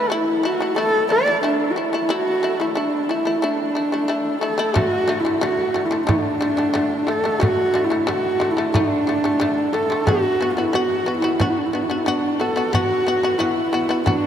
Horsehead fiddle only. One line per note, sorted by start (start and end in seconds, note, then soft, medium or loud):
0.00 0.14 B4 medium
0.12 0.48 E4 medium
0.47 0.78 F#4 medium
0.78 1.09 A4 medium
1.12 1.42 D5 medium
1.45 1.72 D4 medium
1.71 1.79 F#4 medium
1.77 2.12 E4 medium
2.11 2.62 F#4 medium
2.60 2.78 E4 medium
2.77 3.11 D4 medium
3.09 3.45 E4 medium
3.44 4.41 D4 medium
4.42 4.77 A4 medium
4.75 5.21 F#4 medium
5.19 5.43 E4 medium
5.42 5.87 F#4 medium
5.86 6.07 E4 medium
6.08 7.09 D4 medium
7.07 7.41 A4 medium
7.40 7.86 F#4 medium
7.84 8.08 E4 medium
8.06 8.52 F#4 medium
8.51 8.74 E4 medium
8.73 9.74 D4 medium
9.73 10.07 A4 medium
10.05 10.52 F#4 medium
10.50 10.74 E4 medium
10.73 11.17 F#4 medium
11.18 11.44 E4 medium
11.42 11.52 D4 medium
11.50 11.59 E4 medium
11.58 11.67 D4 medium
11.66 11.75 E4 medium
11.73 11.84 D4 medium
11.82 11.90 E4 medium
11.88 11.99 D4 medium
11.98 12.06 E4 medium
12.04 12.41 D4 medium
12.40 12.74 A4 medium
12.72 13.40 F#4 medium
13.38 14.06 E4 medium
14.04 14.27 D4 medium